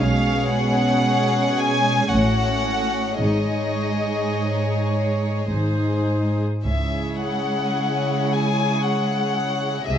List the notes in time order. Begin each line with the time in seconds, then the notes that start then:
0.00 B1 B2 G#3 C#4 G#4 C#5 F5
0.52 F#5
1.58 G#5
2.11 A1 A2 A3 C#4 F#4 C#5 F#5
3.21 G#1 G#2 G#3 D#4 G#4 C#5 D#5
5.50 G#1 G#2 G#3 D#4 G#4 C5
6.63 C#2 C#3 G#3 E4 G#4 C#5 E5
7.21 F#5
8.32 G#5
8.85 F#5
9.85 C2 C3 G#3 F#4 G#4 D#5 E5